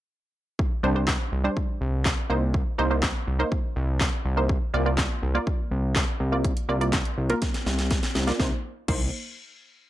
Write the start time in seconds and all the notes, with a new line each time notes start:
0.59 kick
0.83 C2 G3 D4 C5
0.95 G3 D4 C5
1.08 kick, snare, clap
1.32 C2
1.44 G3 D4 C5
1.57 kick
1.81 C2
2.05 kick, snare, clap
2.30 C2 A#3 D#4 C5
2.54 kick
2.78 C2 A#3 D#4 C5
2.91 A#3 D#4 C5
3.03 kick, snare, clap
3.27 C2
3.39 A#3 D#4 C5
3.52 kick
3.76 C2
4.01 kick, snare, clap
4.25 C2
4.37 A#3 D#4 C5
4.49 kick
4.74 C2 A#3 F4 D5
4.86 A#3 F4 D5
4.98 kick, snare, clap
5.22 C2
5.35 A#3 F4 D5
5.47 kick
5.71 C2
5.96 kick, snare, clap
6.20 C2
6.32 A#3 F4 D5
6.45 kick, closed hi-hat
6.57 closed hi-hat
6.69 C2 A#3 F4 D5
6.81 A#3 F4 D5, closed hi-hat
6.93 kick, snare, clap, closed hi-hat
7.05 closed hi-hat
7.18 C2
7.30 A#3 F4 A#4, closed hi-hat
7.42 kick, snare, closed hi-hat
7.54 snare, closed hi-hat
7.66 C2, snare
7.79 snare, closed hi-hat
7.91 kick, snare, closed hi-hat
8.03 snare, closed hi-hat
8.15 C2, snare
8.27 A#3 F4 D5, snare, closed hi-hat
8.40 C2 A#3 D#4 C5, kick, snare
8.88 C2 A#3 D#4 C5, kick, crash